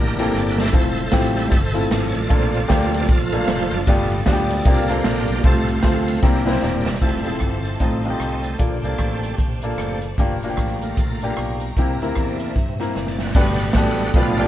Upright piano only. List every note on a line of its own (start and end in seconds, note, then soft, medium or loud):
0.19 0.58 A#3 medium
0.19 0.58 C4 medium
0.19 0.58 E4 medium
0.19 0.59 G4 medium
0.19 0.59 A4 medium
0.72 1.02 A3 medium
0.72 1.02 C4 medium
0.72 1.02 E4 medium
0.72 1.03 F4 medium
0.72 1.03 A4 medium
1.11 1.52 A3 medium
1.11 1.52 C4 medium
1.11 1.53 E4 medium
1.11 1.53 F4 medium
1.11 1.53 G4 medium
1.73 2.14 A3 medium
1.73 2.15 C4 medium
1.73 2.15 E4 medium
1.73 2.15 F4 medium
1.73 2.15 A4 medium
2.29 2.89 A#2 medium
2.29 2.59 A3 medium
2.29 2.59 A#3 medium
2.29 2.59 D4 medium
2.29 2.59 F4 medium
2.29 2.59 A4 medium
2.68 3.09 A3 medium
2.68 3.09 A#3 medium
2.68 3.09 D4 medium
2.68 3.09 F4 medium
2.68 3.09 G4 medium
3.33 3.72 A3 medium
3.33 3.73 A#3 medium
3.33 3.73 D4 medium
3.33 3.73 F4 medium
3.33 3.73 A4 medium
3.87 4.47 G2 medium
3.87 4.17 G3 medium
3.87 4.17 B3 medium
3.87 4.17 D4 medium
3.87 4.17 F4 medium
3.87 4.18 G4 medium
4.26 4.66 G3 medium
4.26 4.66 B3 medium
4.26 4.65 D4 medium
4.26 4.65 F4 medium
4.26 4.33 F#4 medium
4.33 4.65 G4 medium
4.66 5.25 C3 medium
4.66 4.85 A#3 medium
4.66 4.85 C4 medium
4.66 4.85 D4 medium
4.66 4.85 F4 medium
4.66 4.85 G4 medium
4.89 5.29 A#3 medium
4.89 5.30 C4 medium
4.89 5.30 D4 medium
4.89 5.30 F4 medium
4.89 5.30 A4 medium
5.44 6.03 C3 medium
5.44 5.74 A3 medium
5.44 5.74 C4 medium
5.44 5.74 F4 medium
5.44 5.74 A4 medium
5.44 5.74 C5 medium
5.83 6.23 A3 medium
5.83 6.21 C4 medium
5.83 6.23 F4 medium
5.83 6.23 A4 medium
5.83 6.23 C5 medium
6.22 6.82 C3 medium
6.22 6.42 A#3 medium
6.22 6.42 C4 medium
6.22 6.42 E4 medium
6.22 6.42 G4 medium
6.22 6.42 A#4 medium
6.45 6.86 A#3 medium
6.45 6.86 C4 medium
6.45 6.86 E4 medium
6.45 6.86 G4 medium
6.45 6.50 B4 medium
6.51 6.89 C5 medium
7.01 7.18 C4 medium
7.01 7.18 E4 medium
7.01 7.18 F4 medium
7.01 7.18 A4 medium
7.25 7.76 C4 medium
7.25 7.76 E4 medium
7.25 7.77 F4 medium
7.25 7.30 G#4 medium
7.31 7.79 A4 medium
7.80 8.40 A2 medium
7.80 8.00 C4 medium
7.80 8.00 D#4 medium
7.80 8.00 F4 medium
7.80 8.00 A4 medium
8.05 8.45 C4 medium
8.05 8.45 D#4 medium
8.05 8.45 F4 medium
8.05 8.09 F#4 medium
8.10 8.48 G4 medium
8.58 9.19 A#2 medium
8.58 8.75 A#3 medium
8.58 8.75 D4 medium
8.58 8.76 F4 medium
8.58 8.76 A4 medium
8.84 9.35 A#3 medium
8.84 9.35 D4 medium
8.84 9.35 F4 medium
8.84 9.35 A4 medium
9.63 10.03 A#3 medium
9.63 10.03 D4 medium
9.63 10.04 F4 medium
9.63 10.04 A4 medium
10.19 10.79 G2 medium
10.19 10.35 A#3 medium
10.19 10.35 D4 medium
10.19 10.35 F4 medium
10.19 10.35 G4 medium
10.44 10.94 A#3 medium
10.44 10.94 D4 medium
10.44 10.94 F4 medium
10.44 10.47 F#4 medium
10.50 10.97 G4 medium
11.23 11.63 A#3 medium
11.23 11.63 D4 medium
11.23 11.63 F4 medium
11.23 11.63 G4 medium
11.78 12.38 C3 medium
11.78 11.94 A#3 medium
11.78 11.94 C4 medium
11.78 11.94 E4 medium
11.78 11.94 G4 medium
12.02 12.52 A#3 medium
12.02 12.53 C4 medium
12.02 12.53 E4 medium
12.02 12.53 A#4 medium
12.80 13.20 A#3 medium
12.80 13.20 C4 medium
12.80 13.21 E4 medium
12.80 13.21 A#4 medium
13.35 13.95 G2 medium
13.35 13.65 B3 medium
13.35 13.65 D4 medium
13.35 13.65 F#4 medium
13.35 13.65 G4 medium
13.35 13.65 B4 medium
13.76 14.14 B3 medium
13.76 14.15 D4 medium
13.76 14.15 F#4 medium
13.76 14.15 G4 medium
13.76 14.16 A4 medium
14.16 14.48 B2 medium
14.16 14.34 B3 medium
14.16 14.35 D4 medium
14.16 14.35 F4 medium
14.16 14.35 G4 medium
14.16 14.35 B4 medium
14.39 14.42 A#3 medium
14.39 14.48 D4 medium
14.39 14.48 F4 medium
14.39 14.48 G4 medium
14.39 14.48 A4 medium
14.43 14.48 B3 medium